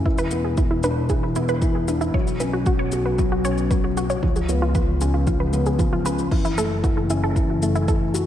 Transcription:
0.05 2.12 E1 medium
0.05 0.31 E3 medium
0.05 0.09 E4 loud
0.05 kick medium
0.18 0.24 B4 loud
0.18 shaker soft
0.31 0.57 B3 medium
0.31 shaker medium
0.45 0.48 G#4 medium
0.57 0.83 E3 medium
0.57 0.61 E4 medium
0.57 kick loud
0.57 shaker soft
0.71 0.74 E4 loud
0.83 1.09 D4 medium
0.83 0.89 B4 medium
0.83 shaker medium
1.09 1.25 E3 medium
1.09 1.13 G#4 medium
1.09 kick medium
1.09 shaker soft
1.23 1.26 E4 medium
1.35 1.51 B3 medium
1.35 1.39 E4 loud
1.35 shaker medium
1.49 1.54 B4 loud
1.49 shaker soft
1.62 1.87 E3 medium
1.62 kick medium
1.62 shaker soft
1.75 1.78 G#4 medium
1.88 2.13 D4 medium
1.88 1.92 E4 medium
1.88 shaker medium
2.01 2.04 E4 medium
2.01 shaker soft
2.14 4.20 B1 medium
2.14 2.29 F#3 medium
2.14 2.20 C#5 medium
2.14 kick medium
2.27 shaker soft
2.40 2.65 C#4 medium
2.40 2.44 B4 medium
2.40 shaker medium
2.53 2.57 F#4 medium
2.66 2.91 F#3 medium
2.66 2.70 F#4 loud
2.66 kick loud
2.66 shaker soft
2.79 2.85 C#5 loud
2.92 3.17 F#4 medium
2.92 shaker medium
3.06 3.09 B4 medium
3.18 3.44 F#3 loud
3.18 3.22 F#4 medium
3.18 kick medium
3.18 shaker soft
3.32 3.35 F#4 medium
3.45 3.60 C#4 medium
3.45 3.50 C#5 loud
3.45 shaker medium
3.58 shaker soft
3.71 3.86 F#3 medium
3.71 3.74 B4 medium
3.71 kick medium
3.71 shaker soft
3.84 3.87 F#4 medium
3.97 4.22 F#4 medium
3.97 4.00 F#4 medium
3.97 shaker medium
4.10 4.15 C#5 medium
4.10 shaker soft
4.23 6.29 C#2 medium
4.23 4.48 F3 medium
4.23 kick medium
4.36 4.39 G#4 medium
4.36 shaker soft
4.49 4.74 B3 medium
4.49 4.52 F4 medium
4.49 shaker medium
4.62 4.65 F4 loud
4.75 5.00 F3 medium
4.75 4.80 B4 loud
4.75 kick loud
4.75 shaker soft
5.01 5.26 C#4 medium
5.01 5.05 G#4 medium
5.01 shaker medium
5.14 5.17 F4 medium
5.27 5.42 F3 medium
5.27 5.31 F4 medium
5.27 kick medium
5.27 shaker soft
5.40 5.46 B4 medium
5.53 5.68 B3 medium
5.53 shaker medium
5.66 5.70 G#4 medium
5.66 shaker soft
5.79 6.04 F3 medium
5.79 5.83 F4 medium
5.79 kick medium
5.79 shaker soft
5.93 5.96 F4 loud
6.05 6.30 C#4 medium
6.05 6.11 B4 loud
6.05 shaker medium
6.19 shaker soft
6.31 8.26 F#1 medium
6.31 6.46 E3 medium
6.31 6.35 E4 medium
6.31 kick loud
6.31 crash medium
6.45 6.48 E4 loud
6.45 shaker soft
6.58 6.82 A3 medium
6.58 6.63 A4 loud
6.58 shaker medium
6.83 7.08 E3 medium
6.83 6.87 F#4 medium
6.83 kick loud
6.83 shaker soft
6.97 7.00 E4 medium
7.10 7.35 C#4 medium
7.10 7.13 E4 medium
7.10 shaker medium
7.24 7.29 A4 loud
7.36 7.61 E3 medium
7.36 kick medium
7.36 shaker soft
7.50 7.53 F#4 medium
7.62 7.77 A3 medium
7.62 7.66 E4 medium
7.62 shaker medium
7.75 7.79 E4 loud
7.75 shaker soft
7.88 8.03 E3 medium
7.88 7.94 A4 loud
7.88 kick loud
7.88 shaker soft
8.14 8.17 F#4 medium
8.14 8.26 F#4 medium
8.14 shaker medium

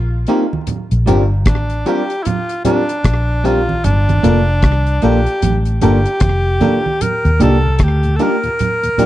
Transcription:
0.00 0.25 A#1 medium
0.27 0.44 A#3 medium
0.27 0.44 C4 medium
0.27 0.44 D#4 medium
0.27 0.44 F4 medium
0.27 0.44 G4 medium
0.27 0.44 A#4 medium
0.27 closed hi-hat medium
0.53 high conga medium
0.67 closed hi-hat medium
0.67 low conga medium
0.91 1.06 A#1 medium
0.91 closed hi-hat soft
1.06 1.46 G1 medium
1.06 1.22 G3 medium
1.06 1.23 C4 medium
1.06 1.23 D4 medium
1.06 1.23 F4 medium
1.06 1.23 G4 loud
1.06 1.23 A#4 medium
1.06 closed hi-hat medium
1.06 low conga medium
1.46 1.83 A1 medium
1.46 1.89 D4 medium
1.46 kick loud
1.46 cross-stick loud
1.46 closed hi-hat medium
1.46 high conga soft
1.70 closed hi-hat medium
1.86 2.02 G3 medium
1.86 2.02 C4 medium
1.86 2.02 D4 medium
1.86 2.02 F4 medium
1.86 2.02 G4 medium
1.86 2.24 G4 medium
1.86 2.02 A#4 medium
1.86 closed hi-hat medium
2.10 2.16 F4 soft
2.10 2.16 G4 soft
2.10 closed hi-hat medium
2.22 2.28 E4 medium
2.22 closed hi-hat medium
2.27 2.65 F4 medium
2.27 low conga medium
2.49 closed hi-hat soft
2.65 2.81 G3 medium
2.65 2.81 C4 medium
2.65 2.81 D4 medium
2.65 3.48 D4 medium
2.65 2.81 D4 medium
2.65 2.81 F4 medium
2.65 2.82 F4 medium
2.65 2.81 G4 medium
2.65 2.82 A#4 medium
2.65 closed hi-hat medium
2.65 low conga medium
2.89 muted clean electric guitar stroke soft
2.89 closed hi-hat soft
3.04 3.80 A#1 medium
3.04 kick loud
3.04 cross-stick loud
3.04 closed hi-hat medium
3.44 3.60 G3 medium
3.44 3.60 C4 medium
3.44 3.60 D4 medium
3.44 3.60 F4 medium
3.44 3.61 F4 medium
3.44 3.86 F4 medium
3.44 3.60 G4 medium
3.44 3.61 A#4 medium
3.44 closed hi-hat medium
3.69 high conga medium
3.84 4.21 G1 loud
3.84 5.05 D4 medium
3.84 closed hi-hat medium
3.84 low conga medium
4.09 closed hi-hat soft
4.09 high conga medium
4.23 4.61 F1 medium
4.23 4.39 A#3 medium
4.23 4.39 D4 medium
4.23 4.40 F4 medium
4.23 4.39 A4 loud
4.23 4.40 A#4 medium
4.23 closed hi-hat medium
4.23 low conga medium
4.62 5.00 C2 medium
4.62 kick loud
4.62 cross-stick loud
4.62 closed hi-hat medium
4.62 high conga soft
4.87 closed hi-hat soft
5.02 5.25 A#1 medium
5.02 5.18 A#3 medium
5.02 5.19 A#3 medium
5.02 5.19 D4 medium
5.02 5.19 F4 medium
5.02 5.58 G4 medium
5.02 5.19 A4 medium
5.02 5.19 A#4 medium
5.02 closed hi-hat medium
5.26 5.33 F4 soft
5.26 5.33 A4 soft
5.26 closed hi-hat medium
5.42 5.80 A1 medium
5.42 closed hi-hat medium
5.42 low conga medium
5.65 closed hi-hat soft
5.81 6.05 G1 medium
5.81 5.98 A#3 medium
5.81 5.98 D4 medium
5.81 5.98 F4 medium
5.81 7.03 G4 loud
5.81 5.98 A4 medium
5.81 5.98 A#4 medium
5.81 closed hi-hat medium
5.81 low conga medium
6.05 muted clean electric guitar stroke soft
6.05 closed hi-hat soft
6.20 6.58 F1 medium
6.20 kick loud
6.20 cross-stick loud
6.20 closed hi-hat medium
6.20 high conga medium
6.60 6.77 A#3 medium
6.60 6.77 D4 medium
6.60 6.77 F4 medium
6.60 6.77 A4 medium
6.60 6.78 A#4 medium
6.60 closed hi-hat medium
6.60 high conga medium
6.60 low conga medium
6.86 high conga soft
7.01 7.44 A#4 loud
7.01 closed hi-hat medium
7.01 low conga medium
7.25 7.31 D#2 medium
7.25 7.39 D#2 medium
7.25 7.31 A#2 medium
7.25 closed hi-hat soft
7.40 7.78 C2 medium
7.40 7.50 G3 medium
7.40 7.56 A#3 medium
7.40 7.50 D4 medium
7.40 7.56 D4 medium
7.40 7.50 D#4 medium
7.40 7.56 F4 medium
7.40 7.56 G4 loud
7.40 7.56 G4 medium
7.40 7.76 A4 medium
7.40 7.57 A#4 medium
7.40 closed hi-hat medium
7.40 low conga medium
7.64 7.71 D#2 medium
7.64 7.71 A#2 medium
7.76 8.17 D2 medium
7.76 7.84 A4 medium
7.76 kick loud
7.76 cross-stick medium
7.76 closed hi-hat medium
7.76 high conga soft
7.83 8.18 G4 medium
8.03 8.10 D#2 medium
8.03 8.10 A#2 medium
8.03 closed hi-hat medium
8.16 8.29 G3 medium
8.16 8.35 A#3 medium
8.16 8.36 A#3 medium
8.16 8.35 D4 medium
8.16 8.30 D4 medium
8.16 8.29 D#4 medium
8.16 8.35 G4 medium
8.16 8.24 A4 medium
8.16 closed hi-hat medium
8.20 8.36 D4 medium
8.20 8.36 F4 medium
8.20 8.36 G4 medium
8.20 8.36 A#4 medium
8.20 9.06 A#4 loud
8.43 8.50 D#2 medium
8.43 8.50 A#2 medium
8.43 8.50 F4 soft
8.43 8.50 G4 soft
8.43 closed hi-hat medium
8.59 closed hi-hat medium
8.59 low conga medium
8.83 8.90 D#2 medium
8.83 8.90 A#2 medium
8.83 closed hi-hat soft
8.98 9.06 G3 medium
8.98 9.06 A#3 medium
8.98 9.06 D4 medium
8.98 9.06 D#4 medium
8.98 9.06 F4 medium
8.98 9.06 G4 medium
8.98 9.06 A#4 medium
8.98 closed hi-hat medium
8.98 low conga medium

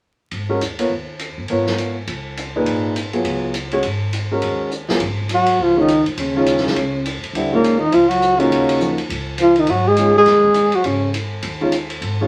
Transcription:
0.31 0.59 G#1 medium
0.31 ride soft
0.49 0.60 G#3 soft
0.49 0.60 C#4 soft
0.49 0.60 F#4 soft
0.49 0.60 A#4 medium
0.60 0.88 D#2 medium
0.60 hi-hat pedal soft
0.60 ride soft
0.79 0.89 B3 soft
0.79 0.89 F4 soft
0.79 0.90 A#4 soft
0.79 0.90 C#5 soft
0.79 ride soft
0.90 1.34 D#2 medium
1.19 hi-hat pedal soft
1.19 ride soft
1.38 1.48 G1 medium
1.48 2.05 G#1 medium
1.48 1.93 B3 soft
1.48 1.93 F4 soft
1.48 1.93 A#4 soft
1.48 1.93 C#5 soft
1.48 ride soft
1.66 snare soft
1.78 hi-hat pedal soft
1.78 ride soft
2.07 2.63 C#2 medium
2.07 ride soft
2.37 hi-hat pedal soft
2.37 ride soft
2.56 2.94 A#2 medium
2.56 2.94 D#4 soft
2.56 2.94 G#4 soft
2.56 2.94 B4 medium
2.66 3.22 G#1 medium
2.66 ride soft
2.96 hi-hat pedal soft
2.96 ride soft
3.13 3.52 F#3 soft
3.13 3.52 B3 soft
3.13 3.52 F4 soft
3.13 3.52 G#4 medium
3.13 ride soft
3.24 3.80 C#2 medium
3.24 ride soft
3.54 hi-hat pedal soft
3.54 ride soft
3.71 3.83 G#3 medium
3.71 3.82 C#4 soft
3.71 3.83 F#4 soft
3.71 3.83 C#5 medium
3.71 ride soft
3.83 4.39 G#1 medium
3.83 ride soft
4.13 hi-hat pedal soft
4.13 ride soft
4.31 4.69 G#3 soft
4.31 4.69 C#4 soft
4.31 4.70 F#4 soft
4.31 4.70 A#4 medium
4.42 4.98 D#2 medium
4.42 ride soft
4.71 hi-hat pedal soft
4.89 5.00 F#3 soft
4.89 5.00 B3 soft
4.89 5.00 F4 soft
4.89 5.00 G#4 medium
4.89 snare soft
5.00 5.56 G#1 medium
5.00 kick medium
5.00 ride medium
5.29 5.62 F#3 medium
5.29 hi-hat pedal soft
5.29 ride soft
5.34 5.64 F#4 medium
5.46 ride medium
5.59 6.03 C#2 medium
5.59 5.77 F3 medium
5.59 5.78 F4 medium
5.77 5.87 D#3 medium
5.77 6.04 D#3 medium
5.77 5.87 G#3 soft
5.77 5.87 C#4 soft
5.77 5.88 F4 medium
5.81 6.06 D#4 medium
5.88 hi-hat pedal soft
5.88 ride soft
6.06 6.17 A#1 medium
6.06 ride soft
6.17 6.61 D#2 medium
6.17 7.19 C#3 medium
6.17 7.20 C#4 medium
6.17 ride medium
6.35 6.74 D#3 medium
6.35 6.74 G#3 medium
6.35 6.74 C#4 medium
6.35 6.74 F4 medium
6.46 hi-hat pedal soft
6.46 ride soft
6.57 snare soft
6.65 muted upright bass stroke soft
6.65 snare soft
6.76 7.20 C#2 medium
6.76 ride soft
7.05 hi-hat pedal soft
7.05 ride soft
7.23 muted upright bass stroke soft
7.23 ride soft
7.33 7.89 D#2 medium
7.33 7.51 D3 soft
7.33 7.51 G3 soft
7.33 7.51 C4 soft
7.33 7.51 E4 soft
7.33 ride soft
7.51 7.80 A#2 medium
7.51 7.78 D#3 soft
7.51 7.78 G#3 soft
7.51 7.81 A#3 medium
7.51 7.78 C#4 soft
7.51 7.78 F4 medium
7.64 hi-hat pedal soft
7.64 ride soft
7.78 7.91 D#3 medium
7.78 7.95 D#4 medium
7.90 8.48 C#2 medium
7.90 8.09 F3 medium
7.90 8.10 F4 medium
7.90 ride soft
8.07 8.37 F#3 medium
8.07 8.41 F#4 medium
8.07 ride soft
8.22 hi-hat pedal soft
8.36 8.96 C#3 medium
8.36 8.78 A#3 medium
8.36 8.98 C#4 medium
8.36 8.78 D#4 medium
8.36 8.78 F4 medium
8.36 8.78 F#4 medium
8.36 ride soft
8.51 9.07 D#2 medium
8.51 ride soft
8.69 ride medium
8.80 8.96 F3 soft
8.80 8.96 A#3 soft
8.80 8.96 D#4 soft
8.80 8.96 F#4 soft
8.80 hi-hat pedal soft
8.98 ride soft
9.09 9.65 C#2 medium
9.09 ride soft
9.38 9.59 F3 medium
9.38 hi-hat pedal soft
9.38 ride soft
9.43 9.61 F4 medium
9.56 9.70 D#3 medium
9.56 ride soft
9.60 9.71 D#4 medium
9.67 10.23 G#1 medium
9.67 9.89 F#3 medium
9.67 9.89 F#4 medium
9.67 ride soft
9.87 10.16 G#3 medium
9.87 10.16 G#4 medium
9.96 10.13 D#3 soft
9.96 10.13 G#3 soft
9.96 10.13 C#4 soft
9.96 10.13 F4 soft
9.96 hi-hat pedal soft
9.96 ride soft
10.16 10.76 G#3 medium
10.16 10.77 G#4 medium
10.26 10.70 D#2 medium
10.26 snare soft
10.26 ride soft
10.44 kick soft
10.54 hi-hat pedal soft
10.54 ride soft
10.72 10.85 F#3 medium
10.72 10.88 F#4 medium
10.72 muted upright bass stroke soft
10.72 ride soft
10.84 11.40 G#1 medium
10.84 11.13 C#3 medium
10.84 11.14 C#4 medium
10.84 ride soft
11.14 hi-hat pedal soft
11.14 ride soft
11.42 11.98 D#2 medium
11.42 ride soft
11.61 11.71 D#3 medium
11.61 11.71 G#3 soft
11.61 11.71 C#4 soft
11.61 11.71 F4 medium
11.72 hi-hat pedal soft
11.72 ride soft
11.90 ride soft
12.01 12.27 G#1 medium
12.01 ride soft
12.21 12.27 D#3 medium
12.21 12.27 G#3 soft
12.21 12.27 C#4 medium
12.21 12.27 F4 medium

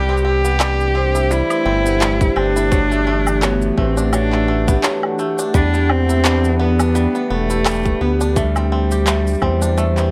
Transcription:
0.00 1.43 C2 medium
0.00 0.58 E3 medium
0.00 10.11 E3 medium
0.00 0.60 G3 medium
0.00 0.23 G4 loud
0.09 0.23 C4 medium
0.09 0.18 G4 medium
0.17 10.11 D4 medium
0.17 shaker soft
0.25 0.44 C4 medium
0.25 1.33 G4 loud
0.35 10.11 A3 medium
0.45 0.94 B3 medium
0.45 0.59 G4 medium
0.45 shaker medium
0.60 1.31 G3 medium
0.60 clap loud
0.60 low woodblock medium
0.60 shaker medium
0.80 shaker soft
0.95 1.49 C4 medium
0.95 1.14 C5 loud
1.13 2.55 E4 medium
1.13 2.72 G4 medium
1.13 shaker medium
1.31 1.85 G3 medium
1.31 2.38 E4 loud
1.31 shaker medium
1.50 1.64 C4 medium
1.50 1.59 B4 medium
1.50 low woodblock medium
1.50 shaker soft
1.66 2.30 G1 loud
1.66 2.35 C4 medium
1.85 2.91 B3 medium
1.85 2.00 G4 medium
1.85 shaker medium
2.01 2.71 G3 medium
2.01 clap medium
2.01 shaker medium
2.21 kick loud
2.21 shaker soft
2.36 3.72 G1 medium
2.36 2.79 C4 medium
2.36 3.45 D4 loud
2.36 2.48 G4 loud
2.36 low woodblock medium
2.56 2.80 E4 medium
2.56 shaker medium
2.72 3.41 F#3 medium
2.72 kick loud
2.72 shaker soft
2.91 3.06 A3 medium
2.91 3.00 G4 medium
2.91 shaker soft
3.07 3.76 A3 medium
3.27 3.42 G4 medium
3.27 8.36 F#5 medium
3.27 low woodblock medium
3.27 shaker medium
3.42 4.12 F#3 medium
3.42 3.81 B3 medium
3.42 clap medium
3.42 shaker medium
3.62 shaker soft
3.77 4.77 A1 medium
3.77 4.32 A3 medium
3.77 4.13 C4 medium
3.77 3.96 B4 loud
3.77 kick medium
3.97 5.38 D4 medium
3.97 shaker medium
4.13 4.82 F#3 medium
4.13 4.80 D4 loud
4.13 low woodblock medium
4.13 shaker medium
4.32 4.47 A3 medium
4.32 4.41 B4 medium
4.32 clap soft
4.48 5.18 A3 medium
4.68 5.74 B3 medium
4.68 4.83 G4 medium
4.68 kick loud
4.68 shaker medium
4.83 5.54 F#3 medium
4.83 clap medium
4.83 shaker medium
5.03 low woodblock medium
5.19 5.62 A3 medium
5.19 5.30 G4 loud
5.19 shaker soft
5.39 6.09 D4 medium
5.39 shaker medium
5.54 7.07 E2 medium
5.54 6.25 G3 loud
5.54 5.92 D4 loud
5.54 kick loud
5.54 shaker medium
5.74 5.89 B3 medium
5.74 5.83 G4 medium
5.74 shaker soft
5.90 6.59 C4 loud
5.90 low woodblock medium
6.09 6.79 E4 medium
6.09 6.24 G4 medium
6.09 shaker medium
6.25 6.95 G3 medium
6.25 clap loud
6.25 shaker medium
6.44 shaker soft
6.59 7.14 B3 medium
6.59 7.26 B3 loud
6.59 6.79 B4 loud
6.79 7.50 D4 medium
6.79 low woodblock medium
6.79 shaker medium
6.95 7.66 G3 medium
6.95 shaker medium
7.15 7.29 B3 medium
7.15 7.24 B4 medium
7.15 shaker soft
7.30 7.95 E1 loud
7.30 8.03 A3 loud
7.30 8.00 B3 medium
7.50 8.20 E4 medium
7.50 7.65 G4 medium
7.50 shaker medium
7.66 8.39 G3 medium
7.66 clap loud
7.66 low woodblock medium
7.66 shaker medium
7.68 shaker soft
7.71 shaker soft
7.73 shaker soft
7.76 shaker soft
7.78 shaker soft
7.81 shaker soft
7.83 shaker soft
7.85 kick loud
7.85 shaker soft
8.01 9.36 D2 medium
8.01 8.44 B3 medium
8.01 8.38 B3 medium
8.01 8.12 G4 loud
8.21 8.59 D4 medium
8.21 shaker medium
8.36 10.11 G3 medium
8.36 9.06 A3 medium
8.36 kick loud
8.36 shaker medium
8.56 8.72 C4 medium
8.56 8.65 G4 medium
8.56 low woodblock medium
8.56 shaker soft
8.68 10.11 G4 medium
8.72 9.42 C4 medium
8.91 10.11 G4 medium
8.91 9.06 G4 medium
8.91 shaker medium
9.07 9.76 A3 medium
9.07 clap loud
9.07 shaker medium
9.27 shaker soft
9.29 shaker soft
9.31 shaker soft
9.33 shaker soft
9.35 shaker soft
9.37 shaker soft
9.38 shaker soft
9.40 10.11 E2 medium
9.40 9.98 C4 medium
9.40 9.61 C5 loud
9.40 kick medium
9.40 low woodblock medium
9.40 shaker soft
9.62 10.11 D4 medium
9.62 shaker medium
9.78 10.11 A3 medium
9.78 shaker medium
9.97 10.11 C4 medium
9.97 10.06 B4 medium
9.97 clap soft
9.97 shaker soft

